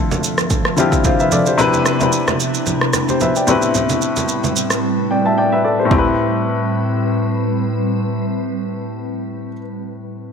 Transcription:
Already playing: D2 C3 D3 F3 C4 E4 F4 A4 E5
0.11 high conga, shaker
0.24 shaker
0.38 cross-stick, shaker
0.50 kick, low conga, shaker
0.65 cross-stick
0.76 D3 C4 E4 F4 G4, high conga, shaker
0.92 kick, high conga, shaker
1.04 C5 F5, kick, low conga, shaker
1.20 B4 E5, shaker
1.32 A4 D5, high conga, low conga, shaker
1.46 G4 C5, shaker
1.58 C3 B3 D4 E4 G4 B4, low conga, shaker
1.73 high conga, shaker
1.86 cross-stick, shaker
1.99 C3 D4 E4 G4 B4, high conga, shaker
2.12 shaker
2.28 cross-stick, high conga, shaker
2.40 shaker
2.54 shaker
2.66 low conga, shaker
2.81 cross-stick
2.93 cross-stick, high conga, shaker
3.09 G4 C5, high conga, shaker
3.20 B4 E5, low conga, shaker
3.36 D5 G5, shaker
3.47 A2 G3 C4 E4 G4 B4, high conga, low conga, shaker
3.62 shaker
3.75 low conga, shaker
3.89 high conga, shaker
4.02 shaker
4.16 high conga, shaker
4.28 shaker
4.44 high conga, shaker
4.56 shaker
4.70 cross-stick, shaker
5.11 D5 G5
5.26 E5 A5
5.38 D5 G5
5.52 B4 E5
5.64 A4 D5
5.79 G4 C5
5.85 A2 C4
5.91 A2 G3 C4 E4 B4, kick, floor tom, high conga
5.95 G4 B4

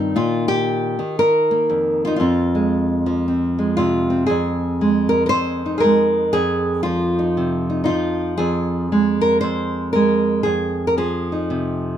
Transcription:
Already playing: G2 D#3 C4
0.00 D#4
0.16 A#2 F4
0.48 G4
0.99 D#3
1.19 A#4
1.51 A#3
1.70 F2
2.05 D#4 F4
2.16 F2 F4
2.21 C4
2.55 G#3
3.06 F3
3.28 C4
3.59 G#3
3.77 C3 F4
4.10 C4
4.26 F2 G#4
4.81 G#3
5.09 A#4
5.26 A#4 C5
5.33 F2
5.66 D#4
5.78 G#4 A#4
5.84 G#3
6.33 F2 G#4
6.83 F3 F4
7.19 D#4
7.37 C3
7.70 D#4
7.84 D#4 F4
7.89 F3
8.38 F2 G#4
8.92 G#3
9.21 A#4
9.41 F2 C5
9.93 G#3 A#4
10.43 F2 G#4
10.87 A#4
10.97 F3 G#4
11.32 D#4
11.50 C3

